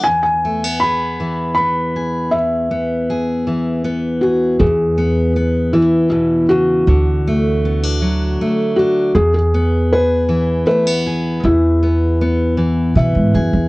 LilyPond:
<<
  \new Staff \with { instrumentName = "Felt piano" } { \time 3/4 \key e \mixolydian \tempo 4 = 79 gis''16 gis''8. b''4 b''4 | e''2 r8 fis'8 | gis'4. e'8 e'8 fis'8~ | fis'2~ fis'8 fis'8 |
gis'16 gis'8. b'4 b'4 | e'2 e''4 | }
  \new Staff \with { instrumentName = "Steel-string acoustic guitar" } { \time 3/4 \key e \mixolydian << { e'8 a16 b16 gis'4 b8 gis'8 | r8 b8 gis'4 b8 gis'8 | r8 b8 b2 | r8 a8 b16 d'8. a8 d'8 |
r8 b8 gis'4 a16 b16 gis'8 | r8 b8 b4 b8 gis'8 | } \\ { e,4. e4. | e,4. e4. | e,4. e8 b,8 cis8 | d4. fis4. |
e,4. e4. | e,4. e4. | } >> }
  \new Staff \with { instrumentName = "Upright bass" } { \clef bass \time 3/4 \key e \mixolydian r2. | r2. | e,2 r4 | d,2 r4 |
e,2 r4 | e,2 b,16 gis,16 fis,16 e,16 | }
>>